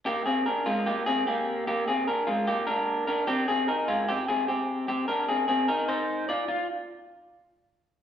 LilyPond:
\new Staff \with { instrumentName = "Clean electric guitar" } { \time 4/4 \key bes \mixolydian \tempo 4 = 150 <bes g'>8 <c' aes'>8 <d' bes'>8 <aes f'>8 <bes g'>8 <c' aes'>8 <bes g'>4 | <bes g'>8 <c' aes'>8 <d' bes'>8 <aes f'>8 <bes g'>8 <d' bes'>4 <d' bes'>8 | <c' g'>8 <c' aes'>8 <ees' bes'>8 <aes f'>8 <c' g'>8 <c' aes'>8 <c' g'>4 | <c' g'>8 <d' bes'>8 <c' aes'>8 <c' aes'>8 <ees' bes'>8 <ees' c''>4 <f' d''>8 |
f'8 r2. r8 | }